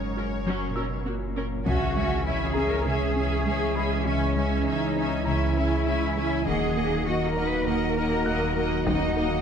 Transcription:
Already playing: sub bass F#1, cello section G#2, ambient pad F#3 C#4 A#4 C#5, violin section C#5, felt piano D#6
0.17 viola section C#4 A#4, synth pluck F#4
0.46 cello section F#2, synth pluck F#3, viola section F#3 C#4
0.68 cello section A#2
0.76 viola section C#4 A#4, synth pluck F#4, felt piano E6
0.88 cello section B2
1.05 cello section A#2, viola section A#3 F#4, synth pluck C#4
1.36 synth pluck C#4, viola section C#4 A#4
1.65 double bass section C#2, sub bass C#2, synth pluck C#3, french horn section E3 G#3, ambient pad E3 C#4 G#4 C#5, viola section C#4, cello section F#4, violin section E5 G#5, taiko, impact
1.96 synth pluck G#3, viola section C#4, violin section E5 G#5
2.25 double bass section C#2, viola section C#4, cello section E4, violin section E5 G#5
2.48 cello section G#4
2.53 synth pluck C#4, viola section C#4, felt piano G#4 A#5, violin section E5 G#5
2.68 cello section A#4
2.86 double bass section C#2, synth pluck C#3, viola section C#4, cello section G#4, violin section E5 G#5
3.16 synth pluck C#4, viola section C#4, violin section E5 G#5
3.46 double bass section C#2, synth pluck G#3, viola section C#4, violin section E5 G#5
3.75 synth pluck G#3, viola section C#4, violin section E5 G#5, felt piano B5
4.06 double bass section C#2, synth pluck C#3, cello section C#4, viola section C#4, violin section E5 G#5
4.37 synth pluck G#3, viola section C#4, violin section E5 G#5
4.67 double bass section C#2, viola section C#4, cello section D#4, violin section E5 G#5
4.96 synth pluck C#4, viola section C#4, violin section E5 G#5
5.25 double bass section C#2, synth pluck C#3, viola section C#4, cello section E4, violin section E5 G#5, felt piano A#5
5.56 viola section C#4, synth pluck C#4, violin section E5 G#5
5.86 double bass section C#2, synth pluck G#3, viola section C#4, violin section E5 G#5
6.16 synth pluck G#3, viola section C#4, violin section E5 G#5
6.46 sub bass D#1, double bass section D#2, synth pluck D#3, ambient pad D#3 A#3 F#4 F#5, french horn section F#3 D#4, viola section A#3, cello section G#4, violin section D#5 F#5, taiko
6.75 synth pluck A#3, viola section A#3, violin section D#5 F#5
7.06 double bass section D#2, viola section A#3, cello section F#4, violin section D#5 F#5
7.27 cello section A#4
7.37 viola section A#3, synth pluck D#4, violin section D#5 F#5
7.47 cello section B4
7.66 double bass section D#2, synth pluck D#3, viola section A#3, cello section A#4, violin section D#5 F#5
7.96 viola section A#3, synth pluck D#4, violin section D#5 F#5
8.26 double bass section D#2, synth pluck A#3, viola section A#3, violin section D#5 F#5, felt piano F#5 F#6
8.57 synth pluck A#3, viola section A#3, violin section D#5 F#5
8.86 double bass section D#2, synth pluck D#3, viola section A#3, cello section D#4, violin section D#5 F#5, taiko
9.17 synth pluck A#3, viola section A#3, violin section D#5 F#5

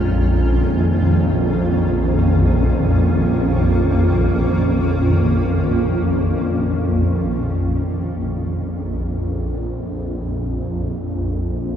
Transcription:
Already playing: synth drone A#1 F2, ambient pad A#2 D#3 G#3 C#4 F4
2.15 ambient pad A#3
7.73 synth drone A#1 F2

